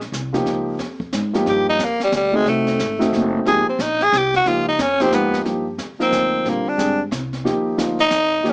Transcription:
Already playing: A#1
0.01 snare
0.12 C2, kick, snare, hi-hat pedal
0.33 F3 A#3 D#4 G4, snare
0.45 C#2, brush sweep, kick, snare
0.79 F2, kick, snare
1.00 kick
1.13 G#2, kick, snare, hi-hat pedal
1.33 F3 A#3 D#4 G4, snare
1.46 G2 G4, brush sweep, kick, snare
1.69 D#4
1.79 F2, kick, snare, hi-hat pedal
1.84 A#3
2.00 G3, snare
2.12 D2 G3, kick, snare, hi-hat pedal
2.32 G#3 A3 C4 D#4 F#4
2.46 C2 A3, brush sweep, kick, snare
2.67 snare
2.79 G#1, kick, snare, hi-hat pedal
2.99 A3 C4 D#4 F#4, snare
3.13 F#1, kick, snare
3.45 G#1 F3 A#3 D#4 G4 G#4, brush sweep, kick, snare
3.69 C4
3.79 A#1 D#4, kick, snare, hi-hat pedal
4.00 G#4, snare
4.12 C2, kick, snare, hi-hat pedal
4.17 G4
4.34 F#4, snare
4.46 C#2 F3 A#3 D#4 F4 G4, brush sweep, kick, snare
4.68 D#4
4.79 F2 C#4, kick, snare, hi-hat pedal
5.00 F3 A#3 C4 D#4 G4, snare
5.12 G#2 B3, kick, snare, hi-hat pedal
5.34 snare
5.45 G2 F3 A#3 D#4 G4, brush sweep, kick, snare
5.78 F2, kick, snare, hi-hat pedal
5.99 F3 A#3 C4 D#4 A#4, muted upright bass stroke, snare
6.12 D2, kick, snare, hi-hat pedal
6.44 A#1 D3 G3 C4 F4, brush sweep, kick, snare
6.49 A#3
6.66 D4, muted upright bass stroke
6.77 G#1 D3 G3 C4 G#4, kick, snare, hi-hat pedal
7.11 C2, kick, snare, hi-hat pedal
7.33 snare
7.44 D#2 F3 A#3 D#4 G4, brush sweep, kick, snare
7.77 D2 F3 A#3 D#4 F4, kick, snare, hi-hat pedal
7.99 D#4, snare
8.11 F2, kick, snare, hi-hat pedal
8.43 D#2 F3 A#3 D#4 G4, brush sweep, kick, snare
8.50 C#4

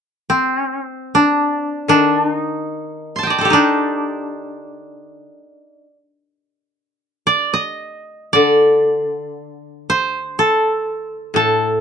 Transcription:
0.30 C4
1.15 D4
1.88 D#3 D4
2.27 D#4
3.16 A5 C6
3.23 D#5 G5
3.30 D5
3.38 A4 C5
3.45 G4
3.50 D4 D#4
7.27 D5
7.54 D#5
8.33 D3 D5
9.90 C5
10.39 A4
11.34 A2 A4

